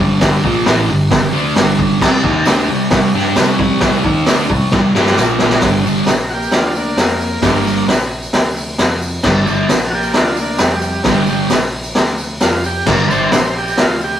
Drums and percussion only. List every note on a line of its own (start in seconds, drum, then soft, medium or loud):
0.21 kick loud
0.21 snare loud
0.21 open hi-hat medium
0.44 kick medium
0.66 snare loud
0.66 open hi-hat medium
1.11 kick loud
1.11 snare loud
1.11 open hi-hat medium
1.56 snare loud
1.56 open hi-hat medium
1.79 kick medium
2.01 kick loud
2.01 snare loud
2.01 crash loud
2.24 kick medium
2.45 snare loud
2.45 open hi-hat medium
2.45 tambourine loud
2.90 kick loud
2.90 snare loud
2.90 open hi-hat medium
3.36 snare loud
3.36 open hi-hat medium
3.36 tambourine medium
3.59 kick medium
3.81 kick loud
3.81 snare loud
3.81 open hi-hat medium
4.04 kick medium
4.26 snare loud
4.26 open hi-hat medium
4.26 tambourine medium
4.50 kick medium
4.71 kick loud
4.71 snare medium
4.95 snare medium
5.06 snare medium
5.17 snare medium
5.17 tambourine medium
5.39 snare loud
5.50 snare medium
5.61 kick loud
5.61 snare loud
5.61 open hi-hat medium
5.61 tambourine soft
5.87 tambourine medium
5.98 tambourine soft
6.06 snare loud
6.06 open hi-hat medium
6.06 tambourine medium
6.31 tambourine soft
6.42 tambourine medium
6.52 snare loud
6.52 open hi-hat medium
6.75 tambourine medium
6.97 snare loud
6.97 open hi-hat medium
6.97 tambourine medium
7.21 tambourine medium
7.33 tambourine soft
7.42 kick loud
7.42 snare loud
7.42 open hi-hat medium
7.67 tambourine medium
7.88 snare loud
7.88 open hi-hat medium
7.88 tambourine medium
8.12 tambourine soft
8.23 tambourine medium
8.33 snare loud
8.33 open hi-hat medium
8.57 tambourine medium
8.78 snare loud
8.78 open hi-hat medium
8.78 tambourine medium
9.02 tambourine medium
9.15 tambourine soft
9.23 kick loud
9.23 snare loud
9.23 crash loud
9.47 tambourine medium
9.69 snare loud
9.69 open hi-hat medium
9.69 tambourine loud
9.92 tambourine soft
10.03 tambourine medium
10.13 snare loud
10.13 open hi-hat medium
10.13 tambourine soft
10.37 tambourine medium
10.58 snare loud
10.58 open hi-hat medium
10.58 tambourine loud
10.82 tambourine medium
10.93 tambourine soft
11.04 kick loud
11.04 snare loud
11.04 open hi-hat medium
11.27 tambourine medium
11.50 snare loud
11.50 open hi-hat medium
11.50 tambourine loud
11.62 tambourine soft
11.83 tambourine medium
11.95 snare loud
11.95 open hi-hat medium
11.95 tambourine soft
12.08 tambourine soft
12.18 tambourine medium
12.30 tambourine soft
12.41 snare loud
12.41 open hi-hat medium
12.41 tambourine loud
12.64 tambourine medium
12.86 kick loud
12.86 snare loud
12.86 crash loud
12.86 tambourine soft
13.11 tambourine medium
13.31 snare loud
13.31 open hi-hat medium
13.31 tambourine loud
13.57 tambourine soft
13.68 tambourine medium
13.77 snare loud
13.77 open hi-hat medium
13.77 tambourine soft
14.01 tambourine medium